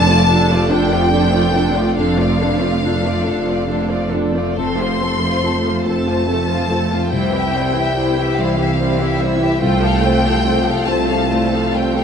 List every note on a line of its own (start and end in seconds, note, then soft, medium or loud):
0.00 0.55 F1 medium
0.00 0.55 F2 medium
0.00 1.94 F2 medium
0.00 0.24 A3 soft
0.00 0.25 D5 medium
0.00 0.70 A5 loud
0.07 0.28 F3 medium
0.07 0.29 A3 medium
0.07 0.29 F4 medium
0.07 0.28 D5 medium
0.28 0.48 D3 medium
0.28 0.47 D4 soft
0.28 0.48 D4 medium
0.28 0.66 F4 soft
0.28 0.47 A4 medium
0.28 0.66 D5 soft
0.49 0.71 F3 soft
0.49 0.71 A3 soft
0.49 0.70 F4 soft
0.49 0.70 D5 soft
0.69 1.82 F1 medium
0.69 1.82 F2 medium
0.69 0.91 D3 medium
0.69 0.90 D4 medium
0.69 0.91 D4 medium
0.69 1.08 F4 soft
0.69 0.90 A4 medium
0.69 1.08 D5 medium
0.69 1.97 G5 medium
0.91 1.12 F3 medium
0.91 1.12 A3 soft
0.91 1.12 F4 soft
0.91 1.12 D5 soft
1.11 1.32 D3 medium
1.11 1.50 A3 soft
1.11 1.31 D4 soft
1.11 1.32 D4 medium
1.11 1.32 A4 medium
1.11 1.50 D5 soft
1.32 1.54 F3 soft
1.32 1.54 A3 soft
1.32 1.54 F4 soft
1.32 1.54 D5 soft
1.53 1.75 D3 soft
1.53 1.75 D4 soft
1.53 1.76 D4 soft
1.53 1.94 F4 soft
1.53 1.76 A4 soft
1.53 1.94 D5 soft
1.75 1.98 F3 soft
1.75 1.97 A3 soft
1.75 1.97 F4 soft
1.75 1.97 D5 soft
1.97 3.11 F1 medium
1.97 3.11 F2 medium
1.97 4.53 F2 medium
1.97 2.17 D3 soft
1.97 2.17 D4 medium
1.97 2.17 A4 medium
1.97 4.08 F5 medium
2.18 2.40 F3 soft
2.18 2.40 A3 soft
2.18 2.41 F4 soft
2.18 2.41 D5 soft
2.39 2.61 D3 soft
2.39 2.80 A3 soft
2.39 2.61 D4 soft
2.39 2.62 D4 soft
2.39 2.62 A4 soft
2.39 2.80 D5 soft
2.61 2.83 F3 soft
2.61 2.83 A3 soft
2.61 2.83 F4 soft
2.61 2.83 D5 soft
2.82 3.02 D3 soft
2.82 3.02 D4 soft
2.82 3.03 D4 soft
2.82 3.23 F4 soft
2.82 3.03 A4 soft
2.82 3.23 D5 soft
3.04 3.26 F3 soft
3.04 3.26 A3 soft
3.04 3.26 F4 soft
3.04 3.26 D5 soft
3.25 4.41 F1 soft
3.25 4.41 F2 medium
3.25 3.47 D3 soft
3.25 3.47 D4 soft
3.25 3.65 F4 soft
3.25 3.47 A4 soft
3.25 3.66 D5 soft
3.47 3.69 F3 soft
3.47 3.69 A3 soft
3.47 3.69 F4 soft
3.47 3.69 D5 soft
3.68 3.88 D3 soft
3.68 4.09 A3 soft
3.68 3.88 D4 soft
3.68 3.89 D4 soft
3.68 3.88 A4 soft
3.68 4.09 D5 soft
3.90 4.12 F3 soft
3.90 4.12 A3 soft
3.90 4.12 F4 soft
3.90 4.12 D5 soft
4.12 4.34 D3 soft
4.12 4.34 D4 soft
4.12 4.53 F4 soft
4.12 4.34 A4 soft
4.12 4.53 D5 soft
4.34 4.56 F3 soft
4.34 4.55 A3 soft
4.34 4.57 F4 soft
4.34 4.57 D5 soft
4.56 5.70 F1 medium
4.56 5.70 F2 medium
4.56 7.08 F2 soft
4.56 4.77 A3 soft
4.56 4.77 C4 soft
4.56 4.77 A4 soft
4.56 5.81 C6 medium
4.78 5.00 F3 soft
4.78 4.99 A3 soft
4.78 5.01 F4 soft
4.78 5.01 C5 soft
5.00 5.20 A3 soft
5.00 5.39 A3 soft
5.00 5.21 C4 soft
5.00 5.23 A4 soft
5.00 5.39 C5 soft
5.21 5.42 F3 soft
5.21 5.42 A3 soft
5.21 5.44 F4 soft
5.21 5.44 C5 soft
5.43 5.63 A3 soft
5.43 5.63 C4 soft
5.43 5.81 F4 soft
5.43 5.63 A4 soft
5.43 5.81 C5 soft
5.64 5.85 F3 soft
5.64 5.84 A3 soft
5.64 5.86 F4 soft
5.64 5.86 C5 soft
5.85 6.96 F1 medium
5.85 6.96 F2 medium
5.85 6.06 A3 soft
5.85 6.06 C4 soft
5.85 6.24 F4 soft
5.85 6.08 A4 soft
5.85 6.24 C5 soft
5.85 7.12 A5 medium
6.07 6.28 F3 soft
6.07 6.27 A3 soft
6.07 6.28 F4 soft
6.07 6.28 C5 soft
6.27 6.65 A3 soft
6.27 6.47 A3 soft
6.27 6.47 C4 soft
6.27 6.47 A4 soft
6.27 6.65 C5 soft
6.49 6.71 F3 soft
6.49 6.70 A3 soft
6.49 6.70 F4 soft
6.49 6.69 C5 soft
6.70 6.91 A3 soft
6.70 6.91 C4 soft
6.70 7.08 F4 soft
6.70 6.91 A4 soft
6.70 7.08 C5 soft
6.91 7.12 F3 soft
6.91 7.12 A3 soft
6.91 7.12 F4 soft
6.91 7.11 C5 soft
7.11 8.22 C2 medium
7.11 8.23 C2 medium
7.11 9.57 C2 soft
7.11 7.31 G3 soft
7.11 7.32 C4 soft
7.11 7.31 E4 soft
7.11 7.31 C5 soft
7.11 8.35 G5 medium
7.33 7.54 E3 soft
7.33 7.54 E4 soft
7.33 7.54 G4 soft
7.33 7.54 E5 soft
7.54 7.75 G3 soft
7.54 7.92 G3 soft
7.54 7.75 C4 soft
7.54 7.76 E4 soft
7.54 7.92 C5 soft
7.54 7.76 C5 soft
7.75 7.96 E3 soft
7.75 7.96 E4 soft
7.75 7.97 G4 soft
7.75 7.97 E5 soft
7.97 8.16 G3 soft
7.97 8.15 C4 soft
7.97 8.34 E4 soft
7.97 8.16 E4 soft
7.97 8.34 C5 soft
7.97 8.16 C5 soft
8.17 8.37 E3 soft
8.17 8.37 E4 soft
8.17 8.38 G4 soft
8.17 8.39 E5 soft
8.37 9.46 C2 medium
8.37 8.75 E3 soft
8.37 8.58 G3 soft
8.37 8.58 C4 soft
8.37 8.59 E4 soft
8.37 8.59 C5 soft
8.37 8.76 C5 soft
8.37 9.19 F5 medium
8.58 8.79 E3 soft
8.58 8.79 E4 soft
8.58 8.79 G4 soft
8.58 8.79 E5 soft
8.78 8.97 G3 medium
8.78 9.16 G3 soft
8.78 8.97 C4 medium
8.78 8.99 E4 soft
8.78 8.99 C5 soft
8.78 9.16 C5 soft
9.00 9.20 E3 soft
9.00 9.20 E4 soft
9.00 9.20 G4 soft
9.00 9.20 E5 soft
9.19 9.40 G3 soft
9.19 9.40 C4 soft
9.19 9.57 E4 soft
9.19 9.40 E4 soft
9.19 9.57 C5 soft
9.19 9.40 C5 soft
9.19 9.60 E5 medium
9.40 9.60 E3 soft
9.40 9.60 E4 soft
9.40 9.61 G4 soft
9.40 9.61 E5 soft
9.60 10.72 C2 medium
9.60 12.04 C2 medium
9.60 9.79 A3 medium
9.60 9.79 C4 medium
9.60 9.80 F4 medium
9.60 9.80 C5 medium
9.60 10.84 G5 loud
9.80 10.02 F3 soft
9.80 10.00 A3 medium
9.80 10.02 A4 medium
9.80 10.02 F5 soft
10.01 10.21 A3 medium
10.01 10.41 A3 soft
10.01 10.23 C4 medium
10.01 10.23 F4 soft
10.01 10.23 C5 soft
10.01 10.42 C5 soft
10.22 10.44 F3 soft
10.22 10.42 A3 soft
10.22 10.44 A4 soft
10.22 10.44 F5 soft
10.43 10.63 A3 soft
10.43 10.63 C4 soft
10.43 10.64 F4 soft
10.43 10.84 F4 soft
10.43 10.64 C5 soft
10.43 10.84 C5 soft
10.65 10.87 F3 soft
10.65 10.85 A3 soft
10.65 10.87 A4 soft
10.65 10.87 F5 soft
10.86 12.03 C2 medium
10.86 11.08 A3 soft
10.86 11.08 C4 medium
10.86 11.08 F4 soft
10.86 11.26 F4 soft
10.86 11.08 C5 soft
10.86 11.27 C5 soft
10.86 11.74 A5 medium
11.07 11.30 F3 soft
11.07 11.28 A3 soft
11.07 11.30 A4 soft
11.07 11.29 F5 soft
11.29 11.50 A3 medium
11.29 11.71 A3 soft
11.29 11.50 C4 soft
11.29 11.50 F4 soft
11.29 11.50 C5 soft
11.29 11.71 C5 soft
11.50 11.74 F3 soft
11.50 11.72 A3 soft
11.50 11.73 A4 soft
11.50 11.74 F5 soft
11.73 11.94 A3 soft
11.73 11.96 C4 soft
11.73 11.96 F4 soft
11.73 12.04 F4 soft
11.73 11.96 C5 soft
11.73 12.04 C5 soft
11.73 12.04 G5 medium
11.95 12.04 F3 soft
11.95 12.04 A3 soft
11.95 12.04 A4 soft
11.95 12.04 F5 soft